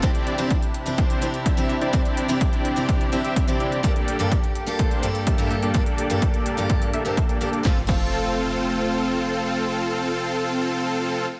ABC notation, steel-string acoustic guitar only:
X:1
M:4/4
L:1/16
Q:1/4=126
K:F
V:1 name="Steel-string acoustic guitar"
[C,CDEG] z2 [C,CDEG] z3 [C,CDEG]3 [C,CDEG]3 [C,CDEG]3 | [C,CDEG] z2 [C,CDEG] z3 [C,CDEG]3 [C,CDEG]3 [C,CDEG]3 | [G,,B,DGA] z2 [G,,B,DGA] z3 [G,,B,DGA]3 [G,,B,DGA]3 [G,,B,DGA]3 | [G,,B,DGA] z2 [G,,B,DGA] z3 [G,,B,DGA]3 z [G,,B,DGc] z2 [B,DGA] z |
[A,CFA] z [A,CFA]12- [A,CFA]2- | [A,CFA]16 |]